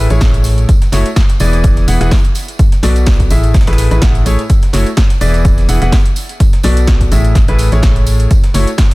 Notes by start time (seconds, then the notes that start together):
0.10 A1 A2 A3 E4 G#4 C#5, snare, closed hi-hat, tambourine
0.21 kick, snare, closed hi-hat
0.34 closed hi-hat, tambourine
0.44 closed hi-hat, open hi-hat, tambourine
0.58 closed hi-hat, tambourine
0.69 kick, closed hi-hat, tambourine
0.82 snare, closed hi-hat, tambourine
0.92 F#1 A3 E4 F#4 C#5, snare, closed hi-hat, open hi-hat, tambourine
1.06 closed hi-hat, tambourine
1.16 kick, snare, closed hi-hat, tambourine
1.29 snare, closed hi-hat, tambourine
1.40 E1 E3 B3 E4 G#4 D5, open hi-hat, tambourine
1.53 snare, closed hi-hat, tambourine
1.64 kick, closed hi-hat, tambourine
1.76 snare, closed hi-hat, tambourine
1.88 E1 E3 B3 E4 G#4 F#5, snare, closed hi-hat, open hi-hat, tambourine
2.01 E1 E3 B3 E4 G#4 F#5, snare, closed hi-hat, tambourine
2.11 kick, snare, closed hi-hat, tambourine
2.24 closed hi-hat, tambourine
2.35 closed hi-hat, open hi-hat, tambourine
2.48 closed hi-hat, tambourine
2.59 kick, closed hi-hat, tambourine
2.72 snare, closed hi-hat, tambourine
2.83 B1 B2 B3 F#4 A4 D5, snare, closed hi-hat, open hi-hat, tambourine
2.96 closed hi-hat, tambourine
3.06 kick, snare, closed hi-hat, tambourine
3.20 kick, closed hi-hat, tambourine
3.30 A1 A2 A3 E4 G#4 E5, closed hi-hat, open hi-hat, tambourine
3.43 closed hi-hat, tambourine
3.54 kick, snare, closed hi-hat, tambourine
3.61 snare, closed hi-hat
3.67 A1 A2 A3 E4 G#4 B4, snare, closed hi-hat, tambourine
3.73 snare, closed hi-hat
3.78 closed hi-hat, open hi-hat, tambourine
3.91 A1 A2 A3 E4 G#4 B4, snare, closed hi-hat, tambourine
4.02 A1 A2 A3 G#4 F#5, kick, snare, closed hi-hat, tambourine
4.15 closed hi-hat, tambourine
4.26 A1 A3 E4 G#4 C#5, closed hi-hat, open hi-hat, tambourine
4.39 closed hi-hat, tambourine
4.49 kick, closed hi-hat, tambourine
4.62 snare, closed hi-hat, tambourine
4.73 F#1 A3 E4 F#4 C#5, snare, closed hi-hat, open hi-hat, tambourine
4.86 closed hi-hat, tambourine
4.97 kick, snare, closed hi-hat, tambourine
5.10 snare, closed hi-hat, tambourine
5.21 E1 E3 B3 E4 G#4 D5, open hi-hat, tambourine
5.34 snare, closed hi-hat, tambourine
5.45 kick, closed hi-hat, tambourine
5.58 snare, closed hi-hat, tambourine
5.69 E1 E3 B3 E4 G#4 F#5, snare, closed hi-hat, open hi-hat, tambourine
5.82 E1 E3 B3 E4 G#4 F#5, snare, closed hi-hat, tambourine
5.92 kick, snare, closed hi-hat, tambourine
6.05 closed hi-hat, tambourine
6.16 closed hi-hat, open hi-hat, tambourine
6.29 closed hi-hat, tambourine
6.40 kick, closed hi-hat, tambourine
6.53 snare, closed hi-hat, tambourine
6.63 B1 B2 B3 F#4 A4 D5, snare, closed hi-hat, open hi-hat, tambourine
6.77 closed hi-hat, tambourine
6.87 kick, snare, closed hi-hat
7.00 kick, closed hi-hat, tambourine
7.12 A1 A2 A3 E4 G#4 E5, closed hi-hat, open hi-hat, tambourine
7.25 closed hi-hat, tambourine
7.35 kick, snare, closed hi-hat, tambourine
7.48 A1 A2 A3 E4 G#4 B4, closed hi-hat, tambourine
7.59 closed hi-hat, open hi-hat, tambourine
7.72 A1 A2 A3 E4 G#4 C#5, snare, closed hi-hat, tambourine
7.83 kick, snare, closed hi-hat, tambourine
7.96 closed hi-hat, tambourine
8.06 closed hi-hat, open hi-hat, tambourine
8.20 closed hi-hat, tambourine
8.31 kick, closed hi-hat, tambourine
8.44 snare, closed hi-hat, tambourine
8.54 F#1 A3 E4 F#4 C#5, snare, closed hi-hat, open hi-hat, tambourine
8.67 closed hi-hat, tambourine
8.78 kick, snare, closed hi-hat, tambourine
8.91 tambourine